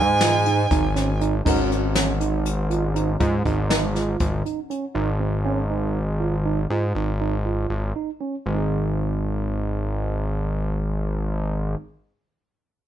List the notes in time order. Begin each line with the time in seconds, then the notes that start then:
Already playing: G#2 D#4 G#4 C5 G#5
0.21 F4, snare, closed hi-hat
0.46 D#4, closed hi-hat
0.71 G#1 D#4, kick, closed hi-hat
0.96 C#4, snare, closed hi-hat
1.21 D#4, closed hi-hat
1.45 G#1 C#4 D#4 F#4 A#4, kick, crash
1.70 C4, closed hi-hat
1.95 C#4, snare, closed hi-hat
2.21 D#4, closed hi-hat
2.46 closed hi-hat
2.70 F4, closed hi-hat
2.96 D#4, closed hi-hat
3.20 G#2 F4, kick, closed hi-hat
3.45 G#1 D#4, kick, closed hi-hat
3.70 D#4, snare, closed hi-hat
3.95 F4, snare, closed hi-hat
4.20 G#1, kick, closed hi-hat
4.45 D#4, closed hi-hat
4.70 C#4, closed hi-hat
4.95 G#1 D#4
5.20 C4
5.45 C#4
5.70 D#4
6.20 F4
6.46 D#4
6.70 G#2 F4
6.95 G#1 D#4
7.21 D#4
7.45 F4
7.70 G#1
7.96 D#4
8.21 C#4
8.46 G#1 G#3 C4
8.54 D#4 G#4